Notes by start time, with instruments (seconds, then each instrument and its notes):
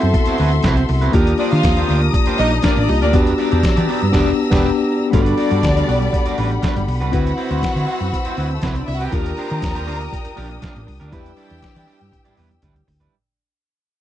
Already playing: tine electric piano B3 C4 E4 F#4, string section A4 E5 F#5 C6
0.02 fingered electric bass F#2, muted clean electric guitar stroke, closed hi-hat
0.13 muted clean electric guitar stroke, kick, closed hi-hat
0.26 clean electric guitar C4 E4 F#4 C5, closed hi-hat
0.38 fingered electric bass D2, clean electric guitar C4 E4 F#4 B4, open hi-hat
0.52 muted clean electric guitar stroke, closed hi-hat
0.63 fingered electric bass C2, clean electric guitar C4 E4 F#4 B4, kick, snare, closed hi-hat
0.77 muted clean electric guitar stroke, closed hi-hat
0.89 fingered electric bass C2, muted clean electric guitar stroke, open hi-hat
1.01 clean electric guitar C4 E4 F#4 B4, closed hi-hat
1.12 fingered electric bass D#2, tine electric piano A#3 D4 F4 G4, clean electric guitar A#3 D4 G4 A#4, string section D4 A#5 D#6, kick, closed hi-hat
1.27 closed hi-hat
1.38 clean electric guitar A#3 D4 G4 C5, violin section D4 D5, open hi-hat
1.51 fingered electric bass D#3, clean electric guitar A#3 D4 G4 C5, violin section F4 F5, closed hi-hat
1.63 fingered electric bass D#2, muted clean electric guitar stroke, kick, snare, closed hi-hat
1.77 clean electric guitar A#3 D4 G4 C5, closed hi-hat
1.88 fingered electric bass D2, clean electric guitar A#3 D4 G4 C5, open hi-hat
2.02 muted clean electric guitar stroke, closed hi-hat
2.13 muted clean electric guitar stroke, kick, closed hi-hat
2.26 clean electric guitar A#3 D4 G4 C5, closed hi-hat
2.38 fingered electric bass A#1, clean electric guitar A#3 D4 G4 A#4, violin section D#4 D#5, open hi-hat
2.51 muted clean electric guitar stroke, closed hi-hat
2.62 clean electric guitar A#3 D4 G4 A#4, violin section D4 D5, kick, snare, closed hi-hat
2.76 fingered electric bass A1, violin section D4 D5, muted clean electric guitar stroke, closed hi-hat
2.88 fingered electric bass C2, tine electric piano A#3 D4 F4 G4, violin section D#4 D#5, muted clean electric guitar stroke, open hi-hat
3.01 fingered electric bass D2, clean electric guitar A#3 D4 G4 A#4, violin section D4 D5, closed hi-hat
3.12 fingered electric bass E2, tine electric piano B3 D4 F#4 G4, clean electric guitar B3 D4 G4 B4, string section E6, kick, closed hi-hat
3.27 closed hi-hat
3.38 clean electric guitar B3 D4 G4 D5, open hi-hat
3.52 fingered electric bass E2, clean electric guitar B3 D4 G4 D5, closed hi-hat
3.63 muted clean electric guitar stroke, kick, snare, closed hi-hat
3.76 fingered electric bass E3, clean electric guitar B3 D4 G4 D5, closed hi-hat
3.88 clean electric guitar B3 D4 G4 D5, open hi-hat
4.02 fingered electric bass G2, muted clean electric guitar stroke, snare, closed hi-hat
4.12 fingered electric bass E1, tine electric piano B3 D4 G4, clean electric guitar B3 D4 G4 D5, kick, snare, crash
4.50 fingered electric bass E1, tine electric piano B3 D4 G4, clean electric guitar B3 D4 G4 B4, kick, snare, crash
5.11 fingered electric bass G1, string section G3 F#5 B5, clean electric guitar G3 D4 F#4 B4, tine electric piano A3 D4 F#4 A4, violin section D4 D5, kick, closed hi-hat
5.17 tine electric piano B3
5.26 closed hi-hat
5.37 clean electric guitar G3 D4 F#4 D5, open hi-hat
5.50 fingered electric bass G2, clean electric guitar G3 D4 F#4 D5, closed hi-hat
5.63 fingered electric bass D2, muted clean electric guitar stroke, kick, snare, closed hi-hat
5.76 clean electric guitar G3 D4 F#4 D5, closed hi-hat
5.88 fingered electric bass B1, clean electric guitar G3 D4 F#4 D5, open hi-hat
6.00 muted clean electric guitar stroke, closed hi-hat
6.13 muted clean electric guitar stroke, kick, closed hi-hat
6.26 clean electric guitar G3 D4 F#4 D5, closed hi-hat
6.38 fingered electric bass A1, clean electric guitar G3 D4 F#4 B4, open hi-hat
6.52 muted clean electric guitar stroke, closed hi-hat
6.62 clean electric guitar G3 D4 F#4 B4, kick, snare, closed hi-hat
6.76 fingered electric bass G1, muted clean electric guitar stroke, closed hi-hat
6.88 fingered electric bass B1, muted clean electric guitar stroke, open hi-hat
7.00 fingered electric bass C2, clean electric guitar G3 D4 F#4 B4, closed hi-hat
7.11 fingered electric bass D2, tine electric piano C4 E4 F#4 B4, clean electric guitar C4 E4 F#4 B4, string section C4 E6, violin section F#4 F#5, kick, closed hi-hat
7.27 closed hi-hat
7.37 clean electric guitar C4 E4 F#4 C5, open hi-hat
7.51 fingered electric bass D2, clean electric guitar C4 E4 F#4 C5, closed hi-hat
7.63 muted clean electric guitar stroke, kick, snare, closed hi-hat
7.75 fingered electric bass D3, clean electric guitar C4 E4 F#4 C5, closed hi-hat
7.87 clean electric guitar C4 E4 F#4 C5, open hi-hat
8.00 fingered electric bass F#2, muted clean electric guitar stroke, closed hi-hat
8.13 muted clean electric guitar stroke, kick, closed hi-hat
8.25 clean electric guitar C4 E4 F#4 C5, closed hi-hat
8.37 fingered electric bass D2, clean electric guitar C4 E4 F#4 B4, open hi-hat
8.50 violin section A3 A4, muted clean electric guitar stroke, closed hi-hat
8.62 fingered electric bass C2, violin section B3 B4, clean electric guitar C4 E4 F#4 B4, kick, snare, closed hi-hat
8.70 violin section C4 C5
8.75 violin section D4 D5, muted clean electric guitar stroke, closed hi-hat
8.87 fingered electric bass C2, violin section E4 E5, muted clean electric guitar stroke, open hi-hat
8.94 violin section F#4 F#5
9.00 clean electric guitar C4 E4 F#4 B4, violin section G4 G5, closed hi-hat
9.11 fingered electric bass D#2, clean electric guitar A#3 D4 G4 A#4, tine electric piano D4 F4 G4 A#4, string section D4 G5 D#6, violin section A#4 A#5, kick, closed hi-hat
9.26 closed hi-hat
9.37 clean electric guitar A#3 D4 G4 C5, open hi-hat
9.50 fingered electric bass D#3, clean electric guitar A#3 D4 G4 C5, closed hi-hat
9.62 fingered electric bass D#2, muted clean electric guitar stroke, kick, snare, closed hi-hat
9.75 clean electric guitar A#3 D4 G4 C5, closed hi-hat
9.86 fingered electric bass D2, clean electric guitar A#3 D4 G4 C5, open hi-hat
10.00 muted clean electric guitar stroke, closed hi-hat
10.12 kick, closed hi-hat
10.25 muted clean electric guitar stroke, closed hi-hat
10.36 fingered electric bass A#1, clean electric guitar A#3 D4 G4 A#4, open hi-hat
10.50 muted clean electric guitar stroke, closed hi-hat
10.61 clean electric guitar A#3 D4 G4 A#4, kick, snare, closed hi-hat
10.75 fingered electric bass A1, muted clean electric guitar stroke, closed hi-hat
10.87 fingered electric bass C2, muted clean electric guitar stroke, open hi-hat
11.00 fingered electric bass D2, clean electric guitar A#3 D4 G4 A#4, closed hi-hat
11.11 fingered electric bass E2, clean electric guitar G3 D4 E4 B4, tine electric piano D4 E4 G4 B4, violin section G4 G5, string section G5 E6, kick, closed hi-hat
11.26 closed hi-hat
11.36 clean electric guitar G3 D4 E4 D5, open hi-hat
11.49 fingered electric bass E2, clean electric guitar G3 D4 E4 D5, closed hi-hat
11.62 muted clean electric guitar stroke, muted fingered electric bass stroke, kick, snare, closed hi-hat
11.75 fingered electric bass E3, clean electric guitar G3 D4 E4 D5, closed hi-hat
11.87 clean electric guitar G3 D4 E4 D5, open hi-hat
12.00 fingered electric bass G2, muted clean electric guitar stroke, snare, closed hi-hat
12.11 muted clean electric guitar stroke, kick, closed hi-hat, high tom
12.25 clean electric guitar G3 D4 E4 D5, closed hi-hat, high tom
12.37 fingered electric bass E2, clean electric guitar G3 D4 E4 B4, open hi-hat, mid tom
12.50 muted clean electric guitar stroke, closed hi-hat, mid tom
12.62 fingered electric bass D2, clean electric guitar G3 D4 E4 B4, kick, closed hi-hat, mid tom
12.75 muted clean electric guitar stroke, closed hi-hat, mid tom
12.87 fingered electric bass D2, muted clean electric guitar stroke, floor tom, open hi-hat
13.00 clean electric guitar G3 D4 E4 B4, floor tom